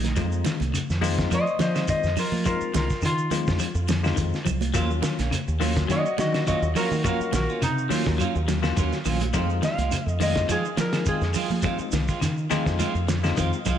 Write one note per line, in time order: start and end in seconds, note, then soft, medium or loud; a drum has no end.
0.00 0.13 A#1 medium
0.00 0.72 D#4 medium
0.00 high conga medium
0.00 shekere soft
0.05 snare soft
0.05 closed hi-hat medium
0.16 0.42 F2 loud
0.16 0.35 F3 medium
0.16 0.59 G#3 medium
0.16 0.59 C4 medium
0.16 0.59 D#4 medium
0.16 0.60 F4 medium
0.16 kick medium
0.16 snare soft
0.16 closed hi-hat medium
0.16 low conga medium
0.16 claves medium
0.16 shekere medium
0.32 shekere soft
0.45 0.63 D#3 medium
0.45 snare medium
0.45 closed hi-hat medium
0.45 high conga medium
0.45 shekere medium
0.60 0.72 C2 medium
0.60 closed hi-hat soft
0.60 high conga medium
0.60 shekere soft
0.74 0.92 C#3 medium
0.74 muted fingered electric bass stroke soft
0.74 closed hi-hat medium
0.74 claves medium
0.74 shekere medium
0.90 1.26 F2 medium
0.90 snare soft
0.90 shekere soft
1.01 1.21 D#3 medium
1.01 1.37 G#3 loud
1.01 1.37 C4 medium
1.01 1.37 D#4 medium
1.01 1.37 F4 loud
1.01 open hi-hat medium
1.01 high conga medium
1.01 low conga medium
1.01 shekere medium
1.19 kick medium
1.19 snare medium
1.19 closed hi-hat medium
1.19 shekere soft
1.31 1.49 F3 medium
1.31 1.45 F3 medium
1.31 1.60 C5 medium
1.31 1.61 D#5 medium
1.31 closed hi-hat medium
1.31 high conga medium
1.31 claves medium
1.31 shekere medium
1.47 shekere soft
1.59 1.85 F3 medium
1.59 1.78 F3 medium
1.59 1.87 C5 medium
1.59 1.88 D#5 medium
1.59 snare medium
1.59 closed hi-hat medium
1.59 high conga medium
1.59 shekere medium
1.74 2.09 G#3 medium
1.74 2.09 C4 medium
1.74 2.09 D#4 medium
1.74 2.09 F4 medium
1.74 snare medium
1.74 closed hi-hat soft
1.74 claves medium
1.74 shekere soft
1.88 2.06 D#3 medium
1.88 2.16 C5 medium
1.88 2.17 D#5 medium
1.88 kick medium
1.88 closed hi-hat medium
1.88 shekere medium
2.04 2.15 F2 medium
2.04 snare soft
2.04 shekere soft
2.17 2.35 F3 medium
2.17 2.45 F4 medium
2.17 2.45 A#4 medium
2.17 open hi-hat medium
2.17 low conga medium
2.17 claves medium
2.17 shekere medium
2.32 2.44 F3 medium
2.32 high conga medium
2.32 shekere soft
2.45 2.64 F3 medium
2.45 2.88 G#3 medium
2.45 2.88 C4 medium
2.45 2.88 D#4 medium
2.45 2.88 F4 medium
2.45 2.73 F4 medium
2.45 2.74 A#4 medium
2.45 kick medium
2.45 closed hi-hat medium
2.45 low conga medium
2.45 claves medium
2.45 shekere medium
2.61 muted fingered electric bass stroke soft
2.61 shekere soft
2.74 2.88 C2 medium
2.74 2.92 D#3 medium
2.74 3.02 F4 medium
2.74 3.03 A#4 medium
2.74 snare medium
2.74 closed hi-hat soft
2.74 high conga medium
2.74 shekere medium
2.90 kick medium
2.90 snare soft
2.90 shekere soft
3.02 3.21 C#3 medium
3.02 3.28 D#3 medium
3.02 4.72 F4 medium
3.02 closed hi-hat medium
3.02 claves medium
3.02 shekere medium
3.18 shekere soft
3.31 3.49 D#3 medium
3.31 3.66 G#3 medium
3.31 3.66 C4 medium
3.31 3.66 D#4 medium
3.31 3.67 F4 medium
3.31 closed hi-hat medium
3.31 high conga medium
3.31 low conga medium
3.31 shekere medium
3.47 3.59 F2 medium
3.47 kick medium
3.47 snare medium
3.47 shekere soft
3.59 3.78 F3 medium
3.59 closed hi-hat medium
3.59 claves medium
3.59 shekere medium
3.75 4.12 F2 medium
3.75 shekere soft
3.88 4.07 F3 medium
3.88 snare medium
3.88 closed hi-hat medium
3.88 high conga medium
3.88 shekere medium
4.03 4.38 G#3 medium
4.03 4.38 C4 medium
4.03 4.38 D#4 medium
4.03 4.38 F4 medium
4.03 snare medium
4.03 claves medium
4.03 shekere soft
4.16 4.31 F2 medium
4.16 4.35 D#3 medium
4.16 kick medium
4.16 closed hi-hat medium
4.16 shekere medium
4.33 snare soft
4.33 shekere soft
4.45 4.72 C2 loud
4.45 4.63 F3 medium
4.45 kick medium
4.45 closed hi-hat medium
4.45 low conga medium
4.45 claves medium
4.45 shekere medium
4.61 closed hi-hat soft
4.61 high conga medium
4.61 shekere soft
4.74 5.00 D#2 loud
4.74 4.92 F3 medium
4.74 5.17 F#3 medium
4.74 4.90 F#3 medium
4.74 5.17 A#3 medium
4.74 4.90 A#3 medium
4.74 5.17 C#4 medium
4.74 5.17 F4 loud
4.74 4.89 F4 medium
4.74 muted clean electric guitar stroke medium
4.74 kick loud
4.74 closed hi-hat medium
4.74 claves medium
4.74 shekere medium
4.91 muted clean electric guitar stroke soft
4.91 shekere soft
5.02 5.21 D#3 medium
5.02 muted clean electric guitar stroke soft
5.02 snare medium
5.02 closed hi-hat medium
5.02 high conga medium
5.02 shekere medium
5.19 5.31 A#1 medium
5.19 5.31 A#3 soft
5.19 5.31 C#4 medium
5.19 snare soft
5.19 closed hi-hat medium
5.19 high conga medium
5.19 shekere soft
5.31 5.50 C#3 medium
5.31 muted clean electric guitar stroke soft
5.31 closed hi-hat medium
5.31 claves medium
5.31 shekere medium
5.48 5.84 D#2 medium
5.48 shekere soft
5.60 5.78 D#3 medium
5.60 5.95 F#3 medium
5.60 5.76 F#3 medium
5.60 5.95 A#3 medium
5.60 5.76 A#3 medium
5.60 5.95 C#4 medium
5.60 5.76 C#4 medium
5.60 5.96 F4 loud
5.60 muted clean electric guitar stroke medium
5.60 open hi-hat medium
5.60 high conga medium
5.60 low conga medium
5.60 shekere medium
5.77 muted clean electric guitar stroke soft
5.77 kick medium
5.77 snare medium
5.77 closed hi-hat soft
5.77 shekere soft
5.88 6.03 D#3 medium
5.88 6.07 F#3 medium
5.88 6.05 F#3 medium
5.88 6.05 A#3 medium
5.88 6.04 C#4 medium
5.88 6.04 F4 medium
5.88 6.18 F#4 medium
5.88 6.18 D#5 loud
5.88 closed hi-hat medium
5.88 claves medium
5.88 shekere medium
6.06 muted clean electric guitar stroke soft
6.06 shekere soft
6.18 6.43 D#3 medium
6.18 6.36 F#3 medium
6.18 6.46 F#4 medium
6.18 6.47 D#5 medium
6.18 muted clean electric guitar stroke soft
6.18 snare medium
6.18 closed hi-hat medium
6.18 high conga medium
6.18 shekere medium
6.32 6.67 F#3 medium
6.32 6.67 A#3 medium
6.32 6.67 C#4 medium
6.32 6.67 F4 medium
6.32 snare medium
6.32 closed hi-hat medium
6.32 claves medium
6.32 shekere soft
6.46 6.65 D#3 medium
6.46 6.62 F#3 medium
6.46 6.62 A#3 medium
6.46 6.62 C#4 medium
6.46 6.62 F4 medium
6.46 6.74 F#4 medium
6.46 6.75 D#5 medium
6.46 kick medium
6.46 closed hi-hat medium
6.46 shekere medium
6.62 6.74 D#2 medium
6.62 muted clean electric guitar stroke soft
6.62 shekere soft
6.75 6.93 F3 medium
6.75 6.91 F#3 medium
6.75 6.91 A#3 medium
6.75 6.91 C#4 medium
6.75 6.91 F4 medium
6.75 7.03 F#4 medium
6.75 7.04 A#4 medium
6.75 open hi-hat medium
6.75 low conga medium
6.75 claves medium
6.75 shekere medium
6.91 7.03 D#3 medium
6.91 muted clean electric guitar stroke soft
6.91 high conga medium
6.91 shekere soft
7.03 7.22 F3 medium
7.03 7.46 F#3 medium
7.03 7.20 F#3 medium
7.03 7.46 A#3 medium
7.03 7.20 A#3 medium
7.03 7.46 C#4 medium
7.03 7.20 C#4 medium
7.03 7.47 F4 medium
7.03 7.19 F4 medium
7.03 7.31 F#4 medium
7.03 7.33 A#4 medium
7.03 kick medium
7.03 closed hi-hat medium
7.03 claves medium
7.03 shekere medium
7.20 muted fingered electric bass stroke soft
7.20 muted clean electric guitar stroke soft
7.20 shekere soft
7.32 7.47 A#1 loud
7.32 7.51 D#3 medium
7.32 7.61 F#4 medium
7.32 7.62 A#4 medium
7.32 muted clean electric guitar stroke soft
7.32 snare medium
7.32 closed hi-hat soft
7.32 high conga medium
7.32 low conga medium
7.32 shekere medium
7.49 7.62 A#3 soft
7.49 7.62 C#4 soft
7.49 7.62 F4 medium
7.49 shekere soft
7.62 7.87 C3 medium
7.62 7.80 C#3 medium
7.62 9.31 D#4 loud
7.62 muted clean electric guitar stroke soft
7.62 closed hi-hat medium
7.62 claves medium
7.62 shekere medium
7.78 shekere soft
7.89 8.08 D#3 medium
7.89 8.25 F#3 medium
7.89 8.06 F#3 medium
7.89 8.25 A#3 medium
7.89 8.06 A#3 medium
7.89 8.25 C#4 medium
7.89 8.06 C#4 medium
7.89 8.25 F4 medium
7.89 8.06 F4 medium
7.89 open hi-hat medium
7.89 high conga medium
7.89 low conga medium
7.89 shekere medium
8.06 8.18 D#2 medium
8.06 muted clean electric guitar stroke soft
8.06 kick medium
8.06 snare medium
8.06 shekere soft
8.18 8.37 F#3 medium
8.18 8.35 F#3 medium
8.18 8.35 A#3 medium
8.18 8.35 C#4 medium
8.18 8.35 F4 medium
8.18 closed hi-hat medium
8.18 claves medium
8.18 shekere medium
8.35 8.72 D#2 medium
8.35 muted clean electric guitar stroke soft
8.35 shekere soft
8.48 8.66 F#3 medium
8.48 muted clean electric guitar stroke soft
8.48 snare medium
8.48 closed hi-hat medium
8.48 high conga medium
8.48 shekere medium
8.62 8.97 F#3 medium
8.62 8.97 A#3 medium
8.62 8.97 C#4 medium
8.62 8.97 F4 loud
8.62 snare medium
8.62 claves medium
8.62 shekere soft
8.77 8.91 D#2 medium
8.77 8.95 D#3 medium
8.77 8.93 F#3 medium
8.77 8.93 A#3 medium
8.77 8.92 C#4 medium
8.77 8.92 F4 medium
8.77 kick medium
8.77 closed hi-hat medium
8.77 shekere medium
8.92 muted clean electric guitar stroke soft
8.92 snare soft
8.92 shekere soft
9.05 9.31 A#1 medium
9.05 9.24 D#3 medium
9.05 9.21 F#3 medium
9.05 9.22 A#3 medium
9.05 9.21 C#4 medium
9.05 9.21 F4 medium
9.05 open hi-hat medium
9.05 high conga medium
9.05 low conga medium
9.05 claves medium
9.05 shekere medium
9.20 muted clean electric guitar stroke soft
9.20 closed hi-hat medium
9.20 high conga medium
9.20 shekere soft
9.33 9.60 F2 loud
9.33 9.50 D#3 medium
9.33 9.52 F3 loud
9.33 9.76 G#3 medium
9.33 9.76 C4 medium
9.33 9.50 C4 medium
9.33 9.76 D#4 medium
9.33 9.77 F4 loud
9.33 9.50 F4 medium
9.33 muted clean electric guitar stroke medium
9.33 kick medium
9.33 closed hi-hat medium
9.33 low conga medium
9.33 claves medium
9.33 shekere medium
9.50 muted clean electric guitar stroke soft
9.50 shekere soft
9.62 9.80 D#3 medium
9.62 10.20 F5 loud
9.62 muted clean electric guitar stroke soft
9.62 snare medium
9.62 closed hi-hat medium
9.62 high conga medium
9.62 low conga medium
9.62 shekere medium
9.78 9.90 C2 medium
9.78 9.93 G#3 soft
9.78 9.93 C4 soft
9.78 9.93 F4 medium
9.78 closed hi-hat medium
9.78 high conga medium
9.78 shekere soft
9.91 10.10 C#3 medium
9.91 muted fingered electric bass stroke soft
9.91 muted clean electric guitar stroke soft
9.91 closed hi-hat medium
9.91 claves medium
9.91 shekere medium
10.06 10.44 F2 medium
10.06 shekere soft
10.20 10.38 D#3 medium
10.20 10.37 D#3 medium
10.20 10.56 G#3 medium
10.20 10.37 G#3 medium
10.20 10.56 C4 medium
10.20 10.37 C4 medium
10.20 10.56 D#4 medium
10.20 10.56 F4 medium
10.20 10.37 F4 medium
10.20 10.50 D#5 medium
10.20 open hi-hat medium
10.20 high conga medium
10.20 low conga medium
10.20 shekere medium
10.36 muted clean electric guitar stroke soft
10.36 kick medium
10.36 snare medium
10.36 closed hi-hat soft
10.36 shekere soft
10.49 10.65 D#3 medium
10.49 10.63 F3 medium
10.49 10.67 F3 medium
10.49 10.65 G#3 medium
10.49 10.64 C4 medium
10.49 10.66 F4 medium
10.49 10.79 G#4 medium
10.49 closed hi-hat medium
10.49 claves medium
10.49 shekere medium
10.65 muted clean electric guitar stroke soft
10.65 shekere soft
10.77 11.03 F3 medium
10.77 10.96 F3 medium
10.77 11.07 A#4 medium
10.77 muted clean electric guitar stroke soft
10.77 snare medium
10.77 closed hi-hat medium
10.77 high conga medium
10.77 shekere medium
10.93 11.27 G#3 medium
10.93 11.27 C4 medium
10.93 11.28 D#4 medium
10.93 11.28 G#4 medium
10.93 snare medium
10.93 closed hi-hat medium
10.93 claves medium
10.93 shekere soft
11.06 11.25 D#3 medium
11.06 11.23 G#3 medium
11.06 11.21 C4 medium
11.06 11.21 F4 medium
11.06 11.64 G#4 medium
11.06 kick medium
11.06 closed hi-hat medium
11.06 shekere medium
11.21 11.34 F2 medium
11.21 muted clean electric guitar stroke soft
11.21 snare soft
11.21 shekere soft
11.34 11.51 D#3 medium
11.34 11.50 G#3 medium
11.34 11.50 C4 medium
11.34 11.50 F4 medium
11.34 muted clean electric guitar stroke medium
11.34 open hi-hat medium
11.34 low conga medium
11.34 claves medium
11.34 shekere medium
11.50 11.62 F3 medium
11.50 muted clean electric guitar stroke soft
11.50 high conga medium
11.50 shekere soft
11.62 11.79 D#3 medium
11.62 11.82 F3 medium
11.62 11.79 G#3 medium
11.62 12.07 G#3 medium
11.62 11.78 C4 medium
11.62 12.07 C4 medium
11.62 12.07 D#4 medium
11.62 11.78 F4 medium
11.62 12.07 F4 medium
11.62 kick medium
11.62 closed hi-hat medium
11.62 claves medium
11.62 shekere medium
11.79 muted fingered electric bass stroke soft
11.79 muted clean electric guitar stroke soft
11.79 shekere soft
11.92 12.07 C2 medium
11.92 12.11 D#3 medium
11.92 muted clean electric guitar stroke soft
11.92 snare medium
11.92 closed hi-hat soft
11.92 high conga medium
11.92 shekere medium
12.08 12.20 G#3 soft
12.08 12.20 C4 medium
12.08 12.20 F4 medium
12.08 kick medium
12.08 snare soft
12.08 shekere soft
12.21 12.40 C#3 medium
12.21 12.47 D#3 medium
12.21 muted clean electric guitar stroke soft
12.21 snare soft
12.21 closed hi-hat medium
12.21 claves medium
12.21 shekere medium
12.37 shekere soft
12.50 12.66 D#3 medium
12.50 12.69 D#3 medium
12.50 12.65 G#3 medium
12.50 12.86 G#3 medium
12.50 12.86 C4 medium
12.50 12.65 C4 medium
12.50 12.86 D#4 medium
12.50 12.86 F4 loud
12.50 12.65 F4 medium
12.50 12.78 G#5 medium
12.50 snare soft
12.50 closed hi-hat soft
12.50 high conga medium
12.50 low conga medium
12.50 shekere medium
12.66 12.78 F2 medium
12.66 muted clean electric guitar stroke medium
12.66 kick medium
12.66 snare medium
12.66 shekere soft
12.79 12.95 D#3 medium
12.79 12.97 F3 medium
12.79 12.94 G#3 medium
12.79 12.94 C4 medium
12.79 12.94 F4 medium
12.79 13.33 F5 medium
12.79 snare soft
12.79 closed hi-hat medium
12.79 high conga medium
12.79 claves medium
12.79 shekere medium
12.95 13.32 F2 medium
12.95 muted clean electric guitar stroke soft
12.95 shekere soft
13.08 13.27 F3 medium
13.08 muted clean electric guitar stroke soft
13.08 snare medium
13.08 closed hi-hat medium
13.08 high conga medium
13.08 shekere medium
13.23 13.58 G#3 medium
13.23 13.58 C4 medium
13.23 13.58 D#4 medium
13.23 13.58 F4 loud
13.23 snare medium
13.23 claves medium
13.23 shekere soft
13.36 13.51 F2 medium
13.36 13.53 D#3 medium
13.36 13.56 D#3 medium
13.36 13.52 G#3 medium
13.36 13.52 C4 medium
13.36 13.52 F4 medium
13.36 13.78 D#5 medium
13.36 kick medium
13.36 closed hi-hat medium
13.36 shekere medium
13.53 muted clean electric guitar stroke soft
13.53 shekere soft
13.65 13.78 C2 medium
13.65 13.78 D#3 medium
13.65 13.78 F3 medium
13.65 13.78 G#3 medium
13.65 13.78 C4 medium
13.65 13.78 F4 medium
13.65 kick medium
13.65 closed hi-hat medium
13.65 low conga medium
13.65 claves medium
13.65 shekere medium